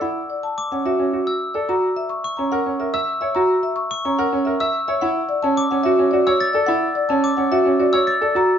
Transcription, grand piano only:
0.01 E4
0.72 C#4
0.85 F#4
0.99 C#4
1.13 F#4
1.55 A4
1.69 F#4
2.38 C#4
2.52 A#4
2.66 C#4
2.80 A#4
2.94 E5
3.22 C#5
3.36 F#4
4.05 C#4
4.19 A#4
4.33 C#4
4.47 A#4
4.60 E5
4.88 C#5
5.02 E4
5.44 C#4
5.72 C#4
5.85 F#4
5.99 C#4
6.13 F#4
6.27 C#5
6.55 A4
6.68 E4
7.10 C#4
7.38 C#4
7.52 F#4
7.65 C#4
7.79 F#4
7.93 C#5
8.21 A4
8.35 F#4

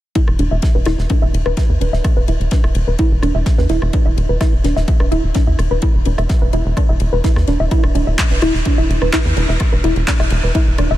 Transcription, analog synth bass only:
0.28 E1
0.39 E1
0.51 E1
0.75 E1
0.86 E1
0.98 E1
1.22 E1
1.33 E1
1.46 E1
1.69 E2
1.81 E1
1.93 E1
2.16 E1
2.28 E1
2.40 E1
2.64 E1
2.75 E1
2.87 E1
3.11 E1
3.22 E1
3.35 E1
3.58 E2
3.70 E1
3.82 E1
4.06 E1
4.17 E1
4.29 E1
4.53 E1
4.64 E1
4.76 E1
5.00 E1
5.11 E1
5.24 E1
5.47 E2
5.59 E1
5.71 E1
5.95 E1
6.06 E1
6.18 E1
6.42 E1
6.53 E1
6.65 E1
6.89 E1
7.00 E1
7.13 E1
7.36 E2
7.48 E1
7.60 E1
7.83 E1
7.95 E1
8.07 E1
8.31 E1
8.42 E1
8.54 E1
8.78 E1
8.89 E1
9.02 E1
9.25 E2
9.37 E1
9.49 E1
9.72 E1
9.84 E1
9.96 E1
10.20 E1
10.31 E1
10.43 E1
10.67 E1
10.78 E1
10.90 E1

